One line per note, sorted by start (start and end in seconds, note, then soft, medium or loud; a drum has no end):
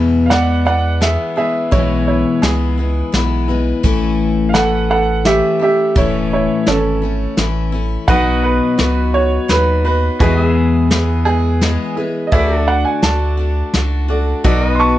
0.00 0.31 E2 medium
0.00 1.17 E2 medium
0.00 0.31 B2 medium
0.00 0.30 E3 medium
0.00 0.31 G#3 loud
0.00 0.32 B3 medium
0.00 0.33 E4 medium
0.26 0.63 D5 medium
0.26 0.30 F5 medium
0.30 0.66 E3 medium
0.30 0.67 G#3 medium
0.30 0.66 B3 medium
0.30 0.64 E4 medium
0.30 0.65 F#5 medium
0.30 snare medium
0.30 closed hi-hat medium
0.65 0.99 E3 soft
0.65 1.01 G#3 soft
0.65 1.01 B3 soft
0.65 1.01 E4 soft
0.65 0.99 D5 medium
0.65 1.01 F#5 medium
1.01 1.37 E3 medium
1.01 1.37 G#3 medium
1.01 1.36 B3 medium
1.01 1.35 E4 medium
1.01 1.34 G#4 medium
1.01 1.36 E5 medium
1.01 snare medium
1.01 closed hi-hat medium
1.36 1.71 E3 soft
1.36 1.72 G#3 soft
1.36 1.72 B3 soft
1.36 1.72 E4 soft
1.36 1.70 G#4 medium
1.36 1.72 E5 medium
1.71 2.25 B1 medium
1.71 2.43 E2 medium
1.71 2.43 B2 medium
1.71 2.42 E3 medium
1.71 2.42 G#3 medium
1.71 2.43 B3 medium
1.71 2.05 E4 medium
1.71 2.45 E4 medium
1.71 2.06 C#5 medium
1.71 kick loud
1.71 closed hi-hat medium
2.08 2.40 E4 medium
2.08 2.42 C#5 medium
2.42 3.03 C#2 medium
2.42 2.78 E3 medium
2.42 2.78 G#3 medium
2.42 2.78 B3 medium
2.42 2.76 E4 medium
2.42 3.11 G#4 medium
2.42 snare medium
2.42 closed hi-hat medium
2.77 3.11 E3 soft
2.77 3.13 G#3 soft
2.77 3.13 B3 soft
2.77 3.13 E4 soft
3.12 3.73 B1 medium
3.12 3.48 E3 medium
3.12 3.49 G#3 medium
3.12 3.48 B3 medium
3.12 3.47 E4 medium
3.12 snare medium
3.12 closed hi-hat medium
3.48 3.83 E3 soft
3.48 3.84 G#3 soft
3.48 3.84 B3 soft
3.48 3.84 E4 medium
3.83 5.41 A1 medium
3.83 4.54 A2 medium
3.83 4.52 E3 medium
3.83 4.54 A3 medium
3.83 4.55 C#4 medium
3.83 4.55 E4 loud
3.83 kick loud
3.83 closed hi-hat medium
4.49 4.54 F5 medium
4.53 5.24 E3 medium
4.53 5.25 A3 medium
4.53 5.26 C#4 medium
4.53 5.26 E4 medium
4.53 4.87 A4 medium
4.53 4.89 F#5 medium
4.53 snare medium
4.53 closed hi-hat medium
4.90 5.23 A4 medium
4.90 5.25 F#5 medium
5.25 5.61 E3 medium
5.25 5.61 A3 medium
5.25 5.60 C#4 medium
5.25 5.58 E4 medium
5.25 5.59 G4 medium
5.25 5.60 E5 medium
5.25 snare medium
5.25 closed hi-hat medium
5.59 5.95 A3 soft
5.59 5.96 C#4 soft
5.59 5.96 E4 soft
5.59 5.94 G4 medium
5.59 5.96 E5 medium
5.95 6.48 E1 medium
5.95 6.67 A2 medium
5.95 6.65 E3 medium
5.95 6.66 A3 medium
5.95 6.67 C#4 medium
5.95 6.30 E4 medium
5.95 6.68 E4 medium
5.95 6.31 C#5 medium
5.95 kick loud
5.95 closed hi-hat medium
6.33 6.65 E4 medium
6.33 6.67 C#5 medium
6.66 7.27 G#1 medium
6.66 7.02 E3 medium
6.66 7.03 A3 medium
6.66 7.34 C#4 medium
6.66 7.02 C#4 medium
6.66 7.01 E4 medium
6.66 7.36 A4 medium
6.66 snare medium
6.66 closed hi-hat medium
7.02 7.37 A3 soft
7.02 7.38 C#4 soft
7.02 7.37 E4 soft
7.37 7.97 A1 medium
7.37 7.73 E3 medium
7.37 7.73 A3 medium
7.37 7.73 C#4 medium
7.37 7.71 E4 medium
7.37 snare medium
7.37 closed hi-hat medium
7.72 8.09 A3 soft
7.72 8.09 C#4 soft
7.72 8.08 E4 medium
8.08 8.61 B1 medium
8.08 8.79 B2 medium
8.08 8.76 F#3 medium
8.08 8.79 B3 medium
8.08 9.12 D#4 medium
8.08 8.78 D#4 medium
8.08 10.19 F#4 medium
8.08 9.12 F#4 medium
8.08 8.79 F#4 medium
8.08 9.15 B4 medium
8.08 10.19 B4 medium
8.08 10.19 D#5 medium
8.08 8.42 F#5 medium
8.08 kick loud
8.08 closed hi-hat medium
8.43 9.12 B4 medium
8.78 9.39 C#2 medium
8.78 9.47 F#3 medium
8.78 9.49 B3 medium
8.78 9.49 D#4 medium
8.78 9.50 F#4 medium
8.78 snare medium
8.78 closed hi-hat medium
9.13 10.20 D#4 soft
9.13 10.20 F#4 soft
9.13 10.20 C#5 medium
9.13 9.49 C#5 medium
9.48 10.09 D#2 medium
9.48 9.84 F#3 medium
9.48 9.85 B3 medium
9.48 9.85 D#4 medium
9.48 9.83 F#4 medium
9.48 9.84 B4 medium
9.48 snare medium
9.48 closed hi-hat medium
9.84 10.20 B3 soft
9.84 10.21 D#4 soft
9.84 10.20 F#4 soft
9.84 10.19 B4 medium
10.20 11.78 E2 medium
10.20 10.91 E2 medium
10.20 10.91 B2 medium
10.20 10.89 E3 medium
10.20 10.90 G#3 medium
10.20 10.91 B3 medium
10.20 11.93 E4 medium
10.20 10.46 F#4 medium
10.20 11.93 G#4 medium
10.20 11.23 G#4 medium
10.20 10.92 G#4 medium
10.20 11.93 B4 medium
10.20 12.31 B4 medium
10.20 10.43 D#5 medium
10.20 kick loud
10.20 closed hi-hat medium
10.43 12.30 G#4 medium
10.43 12.31 E5 medium
10.90 11.26 E3 medium
10.90 11.27 G#3 medium
10.90 11.26 B3 medium
10.90 11.25 G#4 medium
10.90 snare medium
10.90 closed hi-hat medium
11.25 11.60 E3 soft
11.25 11.61 G#3 soft
11.25 11.62 B3 soft
11.25 11.94 G#4 loud
11.25 11.62 G#4 soft
11.61 11.97 E3 medium
11.61 11.97 G#3 medium
11.61 11.97 B3 medium
11.61 11.96 G#4 medium
11.61 snare medium
11.61 closed hi-hat medium
11.96 12.32 E3 soft
11.96 12.32 G#3 soft
11.96 12.33 B3 soft
11.96 12.32 E4 soft
11.96 12.32 G#4 soft
11.96 12.32 B4 soft
12.27 12.32 D#5 medium
12.32 12.85 D2 medium
12.32 13.01 D3 medium
12.32 13.02 A3 medium
12.32 13.03 D4 medium
12.32 14.05 F#4 medium
12.32 13.05 F#4 medium
12.32 12.58 G#4 medium
12.32 14.05 A4 medium
12.32 12.59 B4 medium
12.32 14.05 D5 medium
12.32 14.44 D5 medium
12.32 12.67 E5 medium
12.32 kick loud
12.32 closed hi-hat medium
12.58 14.43 F#4 medium
12.58 14.43 A4 medium
12.68 12.84 F#5 medium
12.85 13.01 G#5 medium
13.02 13.63 D2 medium
13.02 13.38 D3 medium
13.02 13.39 A3 medium
13.02 13.38 D4 medium
13.02 13.36 F#4 medium
13.02 14.40 A5 medium
13.02 snare medium
13.02 closed hi-hat medium
13.37 13.72 A3 soft
13.37 13.74 D4 soft
13.37 13.73 F#4 soft
13.74 14.34 C#2 medium
13.74 14.09 A3 medium
13.74 14.09 D4 medium
13.74 14.07 F#4 medium
13.74 snare medium
13.74 closed hi-hat medium
14.08 14.45 A3 soft
14.08 14.45 D4 medium
14.08 14.44 F#4 soft
14.08 14.43 F#4 medium
14.08 14.45 A4 soft
14.08 14.45 D5 medium
14.44 14.99 B1 medium
14.44 14.99 B2 medium
14.44 14.99 F#3 medium
14.44 14.99 B3 loud
14.44 14.99 D#4 loud
14.44 14.99 F#4 medium
14.44 14.99 F#4 loud
14.44 14.71 A4 medium
14.44 14.99 B4 medium
14.44 14.67 D5 medium
14.44 14.99 D#5 medium
14.44 kick loud
14.44 closed hi-hat medium
14.67 14.99 D#5 medium
14.71 14.99 B4 medium
14.75 14.79 C6 medium
14.79 14.99 A5 medium
14.79 14.99 C#6 medium